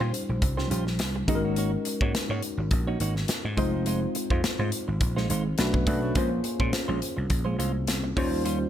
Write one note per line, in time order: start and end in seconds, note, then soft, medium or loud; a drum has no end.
0.00 0.11 A#2 medium
0.00 1.30 G3 medium
0.00 1.28 C#4 medium
0.00 0.13 C#4 medium
0.00 1.28 D#4 medium
0.00 1.30 F4 medium
0.00 0.13 F4 medium
0.00 0.14 G4 medium
0.00 1.30 C5 medium
0.00 0.14 C5 medium
0.14 muted clean electric guitar stroke soft
0.14 closed hi-hat medium
0.29 0.40 A#1 medium
0.29 muted clean electric guitar stroke soft
0.42 0.66 C2 medium
0.42 muted clean electric guitar stroke soft
0.42 kick medium
0.42 closed hi-hat medium
0.57 0.69 C#4 medium
0.57 0.69 F4 soft
0.57 0.69 G4 soft
0.57 0.69 C5 medium
0.57 snare soft
0.70 0.99 A#1 medium
0.70 0.87 C#4 medium
0.70 0.86 F4 medium
0.70 0.86 G4 medium
0.70 0.86 C5 medium
0.70 closed hi-hat medium
0.87 snare soft
0.99 1.23 C2 medium
0.99 muted clean electric guitar stroke soft
0.99 snare loud
0.99 closed hi-hat medium
1.16 muted clean electric guitar stroke soft
1.28 1.75 G#1 medium
1.28 2.20 G#3 medium
1.28 1.44 A#3 medium
1.28 2.20 C#4 medium
1.28 2.20 D#4 medium
1.28 1.44 D#4 medium
1.28 2.21 F#4 medium
1.28 1.44 F#4 medium
1.28 1.36 G#4 medium
1.28 1.44 D#5 medium
1.28 kick medium
1.28 closed hi-hat medium
1.35 2.24 A#4 medium
1.44 1.56 A#3 soft
1.44 1.56 D#4 soft
1.44 1.56 F#4 medium
1.44 1.55 C#5 medium
1.56 1.74 A#3 medium
1.56 1.73 D#4 medium
1.56 1.73 F#4 medium
1.56 1.72 C#5 medium
1.56 closed hi-hat medium
1.74 muted clean electric guitar stroke soft
1.85 muted clean electric guitar stroke soft
1.85 closed hi-hat medium
2.01 2.12 G#2 medium
2.01 2.13 A#3 medium
2.01 2.13 D#4 medium
2.01 2.13 F#4 medium
2.01 2.13 C#5 medium
2.01 kick medium
2.15 snare loud
2.15 closed hi-hat medium
2.29 2.40 G#2 medium
2.29 2.43 A#3 medium
2.29 2.43 D#4 medium
2.29 2.43 F#4 medium
2.29 2.44 C#5 medium
2.43 muted clean electric guitar stroke soft
2.43 closed hi-hat medium
2.57 2.69 G#1 medium
2.57 muted clean electric guitar stroke soft
2.71 2.95 A#1 medium
2.71 muted clean electric guitar stroke soft
2.71 kick medium
2.71 closed hi-hat medium
2.87 2.99 A#3 soft
2.87 2.99 D#4 medium
2.87 2.99 F#4 soft
2.87 2.99 C#5 soft
3.00 3.24 G#1 medium
3.00 3.17 A#3 medium
3.00 3.16 D#4 medium
3.00 3.16 F#4 medium
3.00 3.15 C#5 medium
3.00 closed hi-hat medium
3.16 muted clean electric guitar stroke medium
3.16 snare soft
3.28 muted slap bass stroke soft
3.28 muted clean electric guitar stroke soft
3.28 snare medium
3.28 closed hi-hat medium
3.45 3.59 G#2 medium
3.45 muted clean electric guitar stroke soft
3.57 4.05 F1 loud
3.57 4.50 G#3 medium
3.57 3.73 G#3 medium
3.57 4.50 C4 medium
3.57 4.50 D#4 medium
3.57 3.73 D#4 medium
3.57 4.50 F4 medium
3.57 3.73 F4 medium
3.57 4.50 C5 medium
3.57 3.73 D#5 medium
3.57 kick medium
3.57 closed hi-hat medium
3.73 3.85 G#3 soft
3.73 3.85 D#4 medium
3.73 3.85 F4 medium
3.73 3.85 C5 soft
3.86 4.03 G#3 medium
3.86 4.01 D#4 medium
3.86 4.01 F4 medium
3.86 4.01 C5 medium
3.86 closed hi-hat medium
4.02 muted clean electric guitar stroke soft
4.15 muted clean electric guitar stroke soft
4.15 closed hi-hat medium
4.30 4.41 F2 medium
4.30 4.42 G#3 soft
4.30 4.42 D#4 soft
4.30 4.42 F4 medium
4.30 4.42 C5 medium
4.30 kick medium
4.44 snare loud
4.44 closed hi-hat medium
4.59 4.70 G#2 medium
4.59 4.71 G#3 medium
4.59 4.71 D#4 medium
4.59 4.72 F4 medium
4.59 4.72 C5 medium
4.72 closed hi-hat medium
4.88 5.01 G#1 medium
4.88 muted clean electric guitar stroke soft
5.01 5.25 A#1 medium
5.01 muted clean electric guitar stroke soft
5.01 kick medium
5.01 closed hi-hat medium
5.16 5.28 G#3 soft
5.16 5.28 D#4 soft
5.16 5.28 F4 soft
5.16 5.28 C5 soft
5.16 snare soft
5.29 5.54 G#1 medium
5.29 5.46 G#3 medium
5.29 5.46 D#4 medium
5.29 5.45 F4 medium
5.29 5.44 C5 medium
5.29 closed hi-hat medium
5.46 muted clean electric guitar stroke soft
5.58 5.82 B1 medium
5.58 5.82 A3 medium
5.58 5.82 C#4 medium
5.58 5.82 D4 medium
5.58 5.82 F#4 medium
5.58 5.82 B4 medium
5.58 muted clean electric guitar stroke soft
5.58 snare medium
5.58 closed hi-hat medium
5.74 muted clean electric guitar stroke soft
5.74 kick medium
5.87 6.10 B1 medium
5.87 6.09 A3 medium
5.87 6.02 A3 medium
5.87 6.09 C#4 medium
5.87 6.09 D4 medium
5.87 6.02 D4 medium
5.87 6.01 F#4 medium
5.87 6.09 F#4 medium
5.87 6.09 B4 medium
5.87 6.02 D5 medium
5.87 kick medium
5.87 closed hi-hat medium
6.02 6.14 A3 soft
6.02 6.14 D4 medium
6.02 6.14 F#4 soft
6.02 6.14 C#5 soft
6.15 6.40 A#1 medium
6.15 6.32 G#3 medium
6.15 7.00 A#3 medium
6.15 6.31 C#4 medium
6.15 7.00 C#4 medium
6.15 7.00 F4 medium
6.15 6.31 F4 medium
6.15 7.00 G#4 medium
6.15 6.30 C5 medium
6.15 7.00 C5 medium
6.15 kick loud
6.15 closed hi-hat medium
6.31 muted clean electric guitar stroke soft
6.44 muted clean electric guitar stroke soft
6.44 closed hi-hat medium
6.60 6.71 A#2 medium
6.60 6.72 G#3 soft
6.60 6.72 C#4 soft
6.60 6.72 F4 soft
6.60 6.71 C5 medium
6.60 kick medium
6.73 muted clean electric guitar stroke soft
6.73 snare loud
6.73 closed hi-hat medium
6.88 6.99 A#1 medium
6.88 7.00 G#3 medium
6.88 7.01 C#4 medium
6.88 7.01 F4 medium
6.88 7.01 C5 medium
7.02 closed hi-hat medium
7.17 7.28 C2 medium
7.17 muted clean electric guitar stroke soft
7.30 7.54 A#1 medium
7.30 muted clean electric guitar stroke soft
7.30 kick medium
7.30 closed hi-hat medium
7.45 7.57 G#3 soft
7.45 7.57 C#4 soft
7.45 7.57 F4 soft
7.45 7.57 C5 soft
7.58 7.83 C2 medium
7.58 7.76 G#3 medium
7.58 7.74 C#4 medium
7.58 7.73 F4 medium
7.58 7.73 C5 medium
7.58 closed hi-hat medium
7.74 muted clean electric guitar stroke soft
7.87 8.12 C2 medium
7.87 muted clean electric guitar stroke soft
7.87 snare medium
7.87 closed hi-hat medium
8.04 muted clean electric guitar stroke soft
8.16 8.64 D#2 loud
8.16 8.69 G3 medium
8.16 8.32 G3 medium
8.16 8.32 C#4 medium
8.16 8.69 C#4 medium
8.16 8.69 D#4 medium
8.16 8.31 F4 medium
8.16 8.69 F4 medium
8.16 8.69 C5 loud
8.16 8.32 C#5 medium
8.16 kick medium
8.16 open hi-hat medium
8.32 8.44 G3 soft
8.32 8.44 C#4 soft
8.32 8.44 F4 soft
8.32 8.43 C5 medium
8.45 8.62 G3 medium
8.45 8.60 C#4 medium
8.45 8.60 F4 medium
8.45 8.60 C5 medium
8.45 closed hi-hat medium
8.61 muted clean electric guitar stroke soft